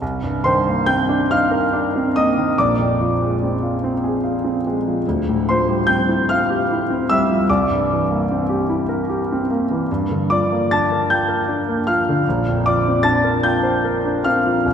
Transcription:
0.02 C2
0.23 G2
0.44 D#3 C5 C6
0.68 A#3
0.86 C4 G5 G6
1.09 D4
1.31 D#4 F5 F6
1.51 A#4
1.73 D4
1.96 C4
2.16 A#3 D#5 D#6
2.38 D#3
2.58 A#1 D5 D6
2.79 F2
3.01 F3
3.22 G#3
3.43 C4
3.63 F4
3.84 C4
4.04 G#4
4.24 F4
4.44 C4
4.67 G#3
4.87 F3
5.08 D2
5.28 A2
5.49 F3 C5 C6
5.68 G3
5.87 C4 G5 G6
6.08 E4
6.29 F4 F5 F6
6.50 G4
6.71 E4
6.90 C4
7.09 G3 E5 E6
7.31 F3
7.50 C2 D5 D6
7.70 G2
7.92 E3
8.11 A#3
8.31 C4
8.49 G4
8.70 E4
8.89 A#4
9.09 G4
9.32 C4
9.51 A#3
9.71 E3
9.91 G2
10.11 D3
10.30 F3 D5 D6
10.52 A#3
10.71 D4 A5 A6
10.92 A#4
11.10 F4 G5 G6
11.28 A#4
11.48 D4
11.69 A#3
11.87 F3 F5 F6
12.09 D3
12.29 A#1
12.48 F2
12.66 F3 D5 D6
12.88 C4
13.03 D4 A5 A6
13.24 A#4
13.43 F4 G5 G6
13.63 C5
13.85 A#4
14.05 D4
14.24 C4 F5 F6
14.46 F3
14.66 C2

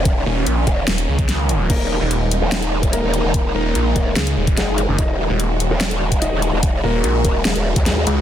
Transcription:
Already playing: D#1 D#3 A#3 C#4
0.05 kick, closed hi-hat
0.26 D#1
0.46 A#1, closed hi-hat
0.67 D#1, kick, closed hi-hat
0.88 D#1, snare, closed hi-hat
0.98 closed hi-hat
1.08 C#2
1.19 kick, closed hi-hat
1.29 snare, closed hi-hat
1.49 closed hi-hat
1.70 D#1 G#3 A#3 D#4 A#4, kick, closed hi-hat, crash
2.01 D#1
2.11 closed hi-hat
2.31 closed hi-hat
2.42 D#1
2.52 snare, closed hi-hat
2.62 closed hi-hat
2.83 kick, closed hi-hat
2.93 A#3 A#4, closed hi-hat
3.04 D#1
3.14 closed hi-hat
3.24 D#1
3.34 kick, closed hi-hat
3.55 D#1 A#3 A#4
3.75 A#1, closed hi-hat
3.96 D#1, kick, closed hi-hat
4.16 C#2 G#3 G#4, snare, closed hi-hat
4.27 closed hi-hat
4.37 D#1
4.47 kick, closed hi-hat
4.57 F#1 G#3 G#4, snare, closed hi-hat
4.78 closed hi-hat
4.88 F#1
4.98 D#1 D#4 F#4 D#5, kick, closed hi-hat
5.30 D#1
5.40 closed hi-hat
5.60 closed hi-hat
5.71 D#1
5.81 snare, closed hi-hat
5.91 closed hi-hat
6.12 kick, closed hi-hat
6.22 D#4 D#5, closed hi-hat
6.32 D#1
6.42 closed hi-hat
6.53 D#1
6.63 kick, closed hi-hat
6.83 D#1 A#3 A#4
7.04 A#1, closed hi-hat
7.25 D#1, kick, closed hi-hat
7.45 D#1 G#3 G#4, snare, closed hi-hat
7.56 D#1, closed hi-hat
7.76 D#2, kick, closed hi-hat
7.86 G#3 G#4, snare, closed hi-hat
8.07 C#2, closed hi-hat

